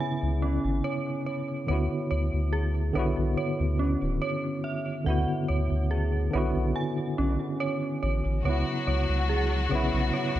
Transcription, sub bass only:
0.23 0.59 C#2 medium
0.65 0.82 G#1 medium
1.69 1.89 D2 loud
2.11 2.31 D2 medium
2.34 2.92 D2 medium
2.96 3.15 B1 medium
3.18 3.36 B1 medium
3.60 3.97 D2 medium
4.02 4.20 D1 medium
5.06 5.26 D2 loud
5.50 5.69 D2 medium
5.71 6.30 D2 medium
6.35 6.54 B1 loud
6.56 6.74 B1 medium
7.19 7.38 B1 medium
8.03 8.22 A1 loud
8.25 8.43 A1 loud
8.45 8.65 C#2 loud
8.87 9.07 C#2 medium
9.09 9.68 C#2 medium
9.72 9.91 B1 medium
9.94 10.12 B1 medium
10.35 10.40 C#2 medium

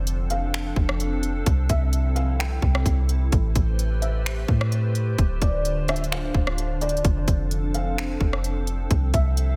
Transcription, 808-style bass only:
0.00 0.73 F1 loud
0.76 1.43 F1 loud
1.46 1.69 C2 loud
1.70 2.59 C2 loud
2.62 2.85 C2 loud
2.86 3.30 C2 loud
3.32 3.55 A1 loud
3.56 4.45 A1 loud
4.48 5.16 A2 loud
5.19 5.41 D1 loud
5.42 6.31 D1 loud
6.34 7.02 D1 loud
7.05 7.27 F1 loud
7.28 8.17 F1 loud
8.21 8.88 F1 loud
8.91 9.13 C2 loud
9.14 9.56 C2 loud

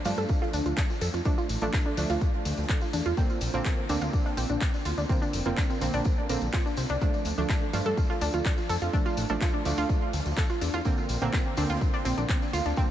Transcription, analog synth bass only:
0.05 0.13 G2 medium
0.18 0.25 G2 medium
0.53 0.61 D2 loud
0.66 0.73 D2 medium
1.01 1.09 F2 medium
1.14 1.21 F2 medium
1.49 1.57 A1 medium
1.62 1.69 A1 medium
1.97 2.05 D2 loud
2.10 2.17 D2 medium
2.45 2.53 D2 medium
2.58 2.65 D2 medium
2.93 3.01 E2 medium
3.06 3.13 E2 medium
3.41 3.49 A#1 medium
3.54 3.61 A#1 medium
3.89 3.97 D2 medium
4.02 4.09 D2 medium
4.37 4.45 A#1 loud
4.50 4.57 A#1 medium
4.85 4.93 D2 medium
4.98 5.05 D2 medium
5.33 5.41 F1 medium
5.46 5.53 F1 medium
5.81 5.89 A#1 medium
5.94 6.01 A#1 medium
6.29 6.37 A#1 medium
6.42 6.49 A#1 medium
6.77 6.85 C2 medium
6.90 6.97 C2 medium
7.25 7.33 D2 medium
7.38 7.45 D2 medium
7.73 7.81 G2 loud
7.86 7.93 G2 medium
8.21 8.29 D2 medium
8.34 8.41 D2 medium
8.69 8.77 F2 medium
8.82 8.89 F2 medium
9.17 9.25 A1 medium
9.30 9.37 A1 medium
9.65 9.73 D2 medium
9.78 9.85 D2 medium
10.13 10.21 D2 loud
10.26 10.33 D2 medium
10.61 10.69 E2 medium
10.74 10.81 E2 medium
11.09 11.17 A#1 medium
11.22 11.29 A#1 medium
11.57 11.65 D2 medium
11.70 11.77 D2 medium
12.05 12.13 A#1 medium
12.18 12.25 A#1 medium
12.53 12.61 D2 medium
12.66 12.73 D2 medium

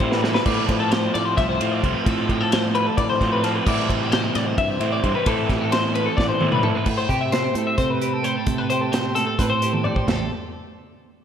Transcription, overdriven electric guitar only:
0.00 0.22 C3 medium
0.00 0.22 E3 medium
0.00 0.22 G3 medium
0.00 0.23 C4 medium
0.00 0.21 E4 medium
0.22 0.45 C3 medium
0.22 0.45 E3 medium
0.22 0.45 G3 medium
0.22 0.47 C4 medium
0.22 0.44 E4 medium
0.46 1.59 A2 medium
0.46 1.59 F3 medium
0.46 1.60 A3 medium
0.46 1.61 C4 medium
0.46 1.59 F4 loud
1.60 1.82 A2 medium
1.60 1.83 F3 medium
1.60 1.83 A3 medium
1.60 1.84 C4 medium
1.60 1.82 F4 medium
1.83 2.05 A2 medium
1.83 2.05 F3 medium
1.83 2.05 A3 medium
1.83 2.08 C4 loud
1.83 2.06 F4 medium
2.07 3.19 A2 loud
2.07 3.20 F3 loud
2.07 3.20 A3 medium
2.07 3.22 C4 loud
2.07 3.20 F4 loud
3.21 3.42 A2 medium
3.21 3.43 F3 medium
3.21 3.43 A3 medium
3.21 3.44 C4 medium
3.21 3.43 F4 medium
3.44 3.66 A2 medium
3.44 3.66 F3 medium
3.44 3.66 A3 medium
3.44 3.68 C4 medium
3.44 3.65 F4 medium
3.67 4.80 C3 medium
3.67 4.82 E3 medium
3.67 4.81 G3 loud
3.67 4.80 C4 medium
3.67 4.80 E4 loud
4.80 5.02 C3 medium
4.80 5.04 E3 medium
4.80 5.04 G3 medium
4.80 5.05 C4 medium
4.80 5.05 E4 loud
5.04 5.25 C3 medium
5.04 5.27 E3 medium
5.04 5.27 G3 medium
5.04 5.27 C4 medium
5.04 5.28 E4 medium
5.26 6.39 A2 medium
5.26 6.40 E3 loud
5.26 6.40 A3 loud
5.26 6.40 C4 medium
5.26 6.40 E4 loud
6.40 6.62 A2 medium
6.40 6.63 E3 medium
6.40 6.63 A3 medium
6.40 6.62 C4 medium
6.40 6.62 E4 medium
6.63 6.86 A2 medium
6.63 6.86 E3 medium
6.63 6.85 A3 medium
6.63 6.85 C4 medium
6.63 6.85 E4 medium

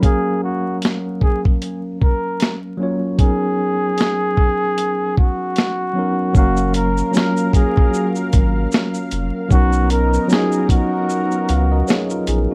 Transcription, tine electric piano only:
0.00 1.16 F#3 medium
0.00 1.17 A#3 medium
0.00 1.17 C#4 medium
0.04 1.19 A#4 medium
0.04 1.18 F5 medium
2.77 3.08 F#3 medium
2.77 3.09 A#3 medium
2.77 3.10 C#4 medium
2.81 3.11 F4 medium
2.81 3.11 C#5 medium
3.17 4.33 F#3 medium
3.17 4.33 B3 medium
3.17 4.34 C#4 medium
3.22 4.35 D#4 medium
3.22 4.35 A#4 medium
5.93 6.24 F#3 medium
5.93 6.25 B3 medium
5.93 6.26 C#4 medium
5.93 6.26 D#4 medium
5.99 6.27 A#4 medium
6.33 6.93 F#3 medium
6.33 6.94 A#3 medium
6.33 6.95 C#4 medium
6.37 6.96 A#4 medium
6.37 6.95 F5 medium
7.11 8.27 F#3 medium
7.11 8.28 A#3 medium
7.11 8.28 C#4 medium
7.16 8.29 F4 medium
7.16 8.30 A#4 medium
9.49 10.09 F#3 medium
9.49 10.10 B3 medium
9.49 10.11 C#4 medium
9.53 10.11 D#4 medium
9.53 10.12 A#4 medium
10.28 11.43 F#3 medium
10.28 11.44 B3 medium
10.28 11.44 C#4 medium
10.32 11.45 D#4 medium
10.32 10.39 F4 medium
10.40 11.49 F#4 medium
11.50 11.71 B4 soft
11.50 11.70 F5 medium
11.72 11.87 A#4 medium
11.72 11.87 D#5 medium
11.88 12.10 G#4 medium
11.88 12.09 C#5 medium
12.11 12.27 F4 medium
12.11 12.27 A#4 medium
12.28 12.49 D#4 medium
12.28 12.49 G#4 medium

